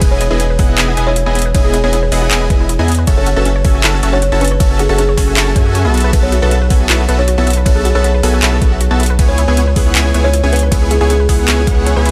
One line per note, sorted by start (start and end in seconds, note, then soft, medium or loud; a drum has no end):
0.01 0.29 E1 loud
0.01 0.23 B3 medium
0.01 0.23 E4 medium
0.01 0.07 B4 medium
0.01 kick loud
0.01 closed hi-hat medium
0.01 ride soft
0.11 0.17 G#4 medium
0.11 0.24 C#5 medium
0.21 0.26 E4 medium
0.21 closed hi-hat medium
0.31 0.57 E1 loud
0.31 0.43 B3 loud
0.31 0.43 E4 medium
0.31 0.43 G#4 medium
0.31 0.36 G#4 medium
0.31 0.43 B4 loud
0.31 0.43 D#5 medium
0.31 0.43 G#5 loud
0.40 0.48 B3 medium
0.40 closed hi-hat medium
0.50 0.55 B4 medium
0.59 0.76 E1 medium
0.59 0.75 B3 medium
0.59 0.75 E4 medium
0.59 0.75 G#4 medium
0.59 0.67 G#4 loud
0.59 0.75 D#5 medium
0.59 0.75 F#5 loud
0.59 kick loud
0.59 open hi-hat medium
0.69 0.74 E4 medium
0.78 0.96 E1 loud
0.78 0.91 B3 loud
0.78 0.86 D#4 medium
0.78 0.91 E4 medium
0.78 0.91 G#4 medium
0.78 0.91 D#5 medium
0.78 0.91 G#5 loud
0.78 clap loud
0.78 closed hi-hat medium
0.78 ride soft
0.88 0.93 B3 medium
0.97 1.25 E1 loud
0.97 1.10 B3 medium
0.97 1.10 E4 medium
0.97 1.10 G#4 medium
0.97 1.03 B4 medium
0.97 1.10 D#5 medium
0.97 1.10 G#5 loud
0.97 closed hi-hat medium
1.07 1.12 E4 medium
1.07 1.45 C#5 medium
1.16 1.24 E4 medium
1.16 closed hi-hat medium
1.26 1.53 E1 loud
1.26 1.39 B3 loud
1.26 1.29 D#4 medium
1.26 1.39 E4 medium
1.26 1.39 G#4 medium
1.26 1.39 D#5 medium
1.26 1.39 G#5 loud
1.35 1.43 B3 medium
1.35 closed hi-hat medium
1.39 closed hi-hat medium
1.42 1.50 B4 medium
1.42 closed hi-hat medium
1.55 1.82 E1 loud
1.55 1.76 B3 medium
1.55 1.76 E4 medium
1.55 1.76 G#4 medium
1.55 1.60 B4 medium
1.55 1.63 C#5 medium
1.55 1.76 D#5 medium
1.55 1.76 G#5 medium
1.55 kick loud
1.55 closed hi-hat medium
1.55 ride soft
1.65 1.69 G#4 medium
1.65 1.77 G#4 medium
1.74 1.79 E4 medium
1.74 closed hi-hat medium
1.84 2.10 E1 loud
1.84 1.96 B3 medium
1.84 1.96 E4 medium
1.84 1.96 G#4 medium
1.84 1.89 G#4 loud
1.84 1.90 C#5 medium
1.84 1.96 D#5 medium
1.84 1.96 G#5 loud
1.93 2.01 B3 medium
1.93 1.99 C#5 medium
1.93 closed hi-hat medium
2.03 2.08 B4 medium
2.12 2.29 E1 loud
2.12 2.28 B3 medium
2.12 2.28 E4 medium
2.12 2.28 G#4 medium
2.12 2.20 G#4 loud
2.12 2.28 D#5 medium
2.12 2.28 F#5 medium
2.12 open hi-hat medium
2.22 2.27 E4 medium
2.31 2.48 E1 loud
2.31 2.44 B3 loud
2.31 2.39 D#4 medium
2.31 2.44 E4 medium
2.31 2.44 G#4 medium
2.31 2.44 D#5 medium
2.31 2.44 G#5 loud
2.31 clap loud
2.31 closed hi-hat medium
2.31 ride soft
2.41 2.46 B3 medium
2.50 2.77 E1 loud
2.50 2.63 B3 medium
2.50 2.63 E4 medium
2.50 2.63 G#4 medium
2.50 2.55 B4 medium
2.50 2.63 G#5 loud
2.50 kick loud
2.50 closed hi-hat medium
2.60 2.65 E4 medium
2.69 2.77 E4 medium
2.69 closed hi-hat medium
2.79 3.05 E2 loud
2.79 2.92 B3 loud
2.79 2.82 D#4 medium
2.79 2.92 E4 medium
2.79 2.92 G#4 medium
2.79 2.92 D#5 medium
2.79 2.92 G#5 loud
2.88 2.96 B3 medium
2.88 closed hi-hat medium
2.92 closed hi-hat medium
2.95 3.03 B4 medium
2.95 closed hi-hat medium
3.07 3.35 F#1 loud
3.07 3.28 C#4 medium
3.07 3.28 F#4 medium
3.07 3.28 A4 medium
3.07 3.13 C#5 medium
3.07 3.28 E5 medium
3.07 3.28 A5 medium
3.07 kick loud
3.07 closed hi-hat medium
3.07 ride soft
3.17 3.22 A4 medium
3.17 3.29 C#5 loud
3.26 3.32 F#4 medium
3.26 closed hi-hat medium
3.36 3.63 F#1 loud
3.36 3.49 C#4 medium
3.36 3.49 F#4 medium
3.36 3.49 A4 medium
3.36 3.41 A4 loud
3.36 3.49 B4 medium
3.36 3.49 E5 medium
3.36 3.49 A5 loud
3.45 3.54 C#4 medium
3.45 closed hi-hat medium
3.56 3.60 C#5 medium
3.65 3.82 F#1 loud
3.65 3.81 C#4 medium
3.65 3.81 F#4 medium
3.65 3.81 A4 medium
3.65 3.73 A4 loud
3.65 3.81 E5 medium
3.65 3.81 G#5 loud
3.65 kick loud
3.65 open hi-hat medium
3.75 3.80 F#4 medium
3.84 4.01 F#1 loud
3.84 3.97 C#4 loud
3.84 3.92 E4 medium
3.84 3.97 F#4 medium
3.84 3.97 A4 medium
3.84 3.97 E5 medium
3.84 3.97 A5 loud
3.84 clap loud
3.84 closed hi-hat medium
3.84 ride soft
3.94 3.99 C#4 medium
4.03 4.30 F#1 loud
4.03 4.16 C#4 medium
4.03 4.16 F#4 medium
4.03 4.16 A4 medium
4.03 4.08 C#5 medium
4.03 4.16 E5 medium
4.03 4.16 A5 loud
4.03 closed hi-hat medium
4.13 4.18 F#4 medium
4.13 4.51 C#5 medium
4.22 4.30 F#4 medium
4.22 closed hi-hat medium
4.32 4.58 F#1 loud
4.32 4.45 C#4 medium
4.32 4.35 E4 medium
4.32 4.45 F#4 medium
4.32 4.45 A4 medium
4.32 4.45 E5 medium
4.32 4.45 A5 loud
4.41 4.49 C#4 medium
4.41 4.48 B4 medium
4.41 closed hi-hat medium
4.45 closed hi-hat medium
4.48 4.57 B4 medium
4.48 4.56 C#5 medium
4.48 closed hi-hat medium
4.60 4.87 F#1 loud
4.60 4.81 C#4 medium
4.60 4.81 F#4 medium
4.60 4.81 A4 medium
4.60 4.66 C#5 medium
4.60 4.81 E5 medium
4.60 4.81 A5 medium
4.60 kick loud
4.60 closed hi-hat medium
4.60 ride soft
4.71 4.75 A4 medium
4.79 4.85 F#4 medium
4.79 4.92 G#4 medium
4.79 closed hi-hat medium
4.89 5.16 F#1 loud
4.89 5.02 C#4 medium
4.89 5.02 F#4 medium
4.89 5.02 A4 medium
4.89 4.94 A4 loud
4.89 5.02 E5 medium
4.89 5.02 A5 loud
4.98 5.06 C#4 medium
4.98 5.11 G#4 medium
4.98 closed hi-hat medium
5.09 5.13 C#5 medium
5.17 5.35 F#1 medium
5.17 5.34 C#4 medium
5.17 5.34 F#4 medium
5.17 5.34 A4 medium
5.17 5.26 A4 loud
5.17 5.34 E5 medium
5.17 5.34 G#5 medium
5.17 kick medium
5.17 open hi-hat medium
5.28 5.32 F#4 medium
5.36 5.54 F#1 medium
5.36 5.50 C#4 loud
5.36 5.45 E4 medium
5.36 5.66 F#4 medium
5.36 5.50 F#4 medium
5.36 5.50 A4 medium
5.36 5.50 E5 medium
5.36 5.50 A5 loud
5.36 clap loud
5.36 closed hi-hat medium
5.36 ride soft
5.47 5.52 C#4 medium
5.56 5.87 F#2 loud
5.56 5.82 C#4 medium
5.56 5.82 F#4 medium
5.56 5.82 A4 medium
5.56 5.61 C#5 medium
5.56 5.82 E5 medium
5.56 5.82 G#5 loud
5.56 kick loud
5.56 closed hi-hat medium
5.66 5.71 F#4 medium
5.75 5.83 F#4 medium
5.75 closed hi-hat medium
5.85 6.11 B1 loud
5.85 6.11 B3 medium
5.85 5.88 E4 medium
5.85 6.11 F#4 medium
5.85 6.11 A4 medium
5.85 6.11 E5 medium
5.85 6.11 A5 medium
5.94 6.02 B3 medium
5.94 closed hi-hat soft
5.97 closed hi-hat medium
6.00 6.09 B4 medium
6.00 closed hi-hat medium
6.13 6.40 B1 loud
6.13 6.34 B3 medium
6.13 6.34 F#4 medium
6.13 6.34 A4 medium
6.13 6.18 B4 medium
6.13 6.34 E5 medium
6.13 6.34 A5 medium
6.13 kick loud
6.13 closed hi-hat medium
6.13 ride medium
6.23 6.28 A4 medium
6.23 6.35 C#5 medium
6.32 6.38 F#4 medium
6.32 closed hi-hat medium
6.42 6.69 B1 loud
6.42 6.55 B3 medium
6.42 6.55 F#4 medium
6.42 6.55 A4 medium
6.42 6.47 A4 loud
6.42 6.54 B4 medium
6.42 6.55 E5 medium
6.42 6.55 A5 loud
6.51 6.59 B3 medium
6.51 closed hi-hat medium
6.62 6.66 B4 medium
6.70 6.88 B1 loud
6.70 6.87 B3 medium
6.70 6.87 F#4 medium
6.70 6.87 A4 medium
6.70 6.78 A4 loud
6.70 6.87 E5 medium
6.70 6.87 G#5 loud
6.70 kick loud
6.70 open hi-hat loud
6.80 6.85 F#4 medium
6.90 7.07 B1 loud
6.90 7.03 B3 loud
6.90 6.97 E4 medium
6.90 7.03 F#4 medium
6.90 7.03 A4 medium
6.90 7.03 E5 medium
6.90 7.03 A5 loud
6.90 clap loud
6.90 closed hi-hat medium
6.90 ride soft
7.00 7.04 B3 medium
7.09 7.36 B1 loud
7.09 7.22 B3 medium
7.09 7.22 F#4 medium
7.09 7.22 A4 medium
7.09 7.14 B4 medium
7.09 7.22 E5 medium
7.09 7.22 A5 loud
7.09 closed hi-hat medium
7.19 7.24 F#4 medium
7.19 7.57 C#5 medium
7.28 7.36 F#4 medium
7.28 closed hi-hat medium
7.38 7.64 B1 medium
7.38 7.51 B3 loud
7.38 7.41 E4 medium
7.38 7.51 F#4 medium
7.38 7.51 A4 medium
7.38 7.51 E5 medium
7.38 7.51 A5 loud
7.47 7.55 B3 medium
7.47 closed hi-hat medium
7.50 closed hi-hat medium
7.53 7.62 B4 medium
7.53 closed hi-hat medium
7.66 7.93 B1 loud
7.66 7.87 B3 medium
7.66 7.87 F#4 medium
7.66 7.87 A4 medium
7.66 7.71 B4 medium
7.66 7.74 C#5 loud
7.66 7.87 E5 medium
7.66 7.87 A5 medium
7.66 kick loud
7.66 closed hi-hat medium
7.66 ride medium
7.76 7.88 G#4 medium
7.76 7.81 A4 medium
7.85 7.90 F#4 medium
7.85 closed hi-hat medium
7.95 8.21 B1 loud
7.95 8.08 B3 medium
7.95 8.08 F#4 medium
7.95 8.08 A4 medium
7.95 8.00 A4 loud
7.95 8.01 C#5 medium
7.95 8.08 E5 medium
7.95 8.08 A5 loud
8.03 8.12 B3 medium
8.03 8.10 C#5 medium
8.03 closed hi-hat medium
8.14 8.19 B4 medium
8.23 8.41 B1 medium
8.23 8.40 B3 medium
8.23 8.40 F#4 medium
8.23 8.40 A4 medium
8.23 8.31 A4 loud
8.23 8.40 E5 medium
8.23 8.40 G#5 loud
8.23 open hi-hat loud
8.34 8.38 F#4 medium
8.42 8.60 B1 loud
8.42 8.56 B3 loud
8.42 8.51 E4 medium
8.42 8.56 F#4 medium
8.42 8.56 A4 medium
8.42 8.56 E5 medium
8.42 8.56 A5 loud
8.42 clap loud
8.42 closed hi-hat medium
8.42 ride soft
8.53 8.57 B3 medium
8.62 8.89 B1 loud
8.62 8.75 B3 medium
8.62 8.75 F#4 medium
8.62 8.75 A4 medium
8.62 8.67 B4 medium
8.62 kick loud
8.62 closed hi-hat medium
8.72 8.76 F#4 medium
8.81 8.89 F#4 medium
8.81 closed hi-hat medium
8.91 9.20 B1 loud
8.91 9.03 B3 loud
8.91 8.94 E4 medium
8.91 9.03 F#4 medium
8.91 9.03 A4 medium
8.91 9.03 E5 medium
8.91 9.03 A5 loud
9.00 9.08 B3 medium
9.00 closed hi-hat soft
9.03 closed hi-hat medium
9.06 9.15 B4 medium
9.06 closed hi-hat medium
9.19 9.46 C#2 loud
9.19 9.40 B3 medium
9.19 9.40 E4 medium
9.19 9.40 G#4 medium
9.19 9.24 B4 medium
9.19 9.40 C#5 medium
9.19 9.40 G#5 medium
9.19 kick loud
9.19 closed hi-hat medium
9.19 ride soft
9.29 9.34 G#4 medium
9.29 9.41 C#5 loud
9.38 9.43 E4 medium
9.38 closed hi-hat medium
9.48 9.74 C#2 loud
9.48 9.61 B3 loud
9.48 9.61 E4 medium
9.48 9.61 G#4 medium
9.48 9.53 G#4 loud
9.48 9.60 B4 loud
9.48 9.61 C#5 medium
9.48 9.61 G#5 loud
9.57 9.65 B3 medium
9.57 closed hi-hat medium
9.67 9.72 B4 medium
9.76 9.94 C#2 loud
9.76 9.93 B3 medium
9.76 9.93 E4 medium
9.76 9.93 G#4 medium
9.76 9.84 G#4 loud
9.76 9.93 C#5 medium
9.76 9.93 F#5 loud
9.76 kick loud
9.76 open hi-hat loud
9.86 9.91 E4 medium
9.95 10.13 C#2 loud
9.95 10.09 B3 loud
9.95 10.03 C#4 medium
9.95 10.09 E4 medium
9.95 10.09 G#4 medium
9.95 10.09 C#5 medium
9.95 10.09 G#5 loud
9.95 clap loud
9.95 closed hi-hat medium
9.95 ride soft
10.05 10.10 B3 medium
10.14 10.42 C#2 loud
10.14 10.28 B3 medium
10.14 10.28 E4 medium
10.14 10.28 G#4 medium
10.14 10.20 B4 medium
10.14 10.28 C#5 medium
10.14 10.28 G#5 loud
10.14 closed hi-hat medium
10.24 10.29 E4 medium
10.24 10.63 C#5 loud
10.33 10.42 E4 medium
10.33 closed hi-hat medium
10.43 10.70 C#2 medium
10.43 10.56 B3 medium
10.43 10.47 C#4 medium
10.43 10.56 E4 medium
10.43 10.56 G#4 medium
10.43 10.56 C#5 medium
10.43 10.56 G#5 loud
10.53 10.61 B3 medium
10.53 10.59 B4 medium
10.53 closed hi-hat medium
10.56 closed hi-hat medium
10.59 10.69 B4 medium
10.59 10.67 B4 medium
10.59 closed hi-hat medium
10.71 10.99 C#2 loud
10.71 10.93 B3 medium
10.71 10.93 E4 medium
10.71 10.93 G#4 medium
10.71 10.77 B4 medium
10.71 10.93 C#5 medium
10.71 10.93 G#5 medium
10.71 kick loud
10.71 closed hi-hat medium
10.71 ride soft
10.82 10.87 G#4 medium
10.91 10.96 E4 medium
10.91 11.04 G#4 medium
10.91 closed hi-hat medium
11.01 11.27 C#2 loud
11.01 11.13 B3 medium
11.01 11.14 E4 medium
11.01 11.14 G#4 medium
11.01 11.06 G#4 loud
11.01 11.13 C#5 medium
11.01 11.14 G#5 loud
11.10 11.18 B3 medium
11.10 11.23 G#4 medium
11.10 closed hi-hat medium
11.20 11.25 B4 medium
11.29 11.46 C#2 loud
11.29 11.45 B3 medium
11.29 11.45 E4 medium
11.29 11.45 G#4 medium
11.29 11.37 G#4 loud
11.29 11.45 C#5 medium
11.29 11.45 F#5 loud
11.29 kick medium
11.29 open hi-hat medium
11.39 11.44 E4 medium
11.48 11.65 C#2 loud
11.48 11.61 B3 loud
11.48 11.56 C#4 medium
11.48 11.61 E4 medium
11.48 11.77 F#4 medium
11.48 11.61 G#4 medium
11.48 11.61 C#5 medium
11.48 11.61 G#5 loud
11.48 clap loud
11.48 closed hi-hat medium
11.48 ride soft
11.58 11.63 B3 medium
11.67 11.94 C#2 loud
11.67 11.94 B3 medium
11.67 11.94 E4 medium
11.67 11.94 G#4 medium
11.67 11.70 G#4 medium
11.67 11.94 C#5 medium
11.67 11.94 F#5 loud
11.67 kick loud
11.67 closed hi-hat medium
11.77 11.82 G#4 medium
11.86 11.94 C#4 loud
11.86 closed hi-hat medium
11.96 12.11 C#2 loud
11.96 12.11 B3 medium
11.96 12.11 E4 medium
11.96 12.11 G#4 medium
11.96 11.99 B4 medium
11.96 12.11 C#5 medium
11.96 12.11 G#5 medium
12.05 12.11 E4 loud
12.05 closed hi-hat medium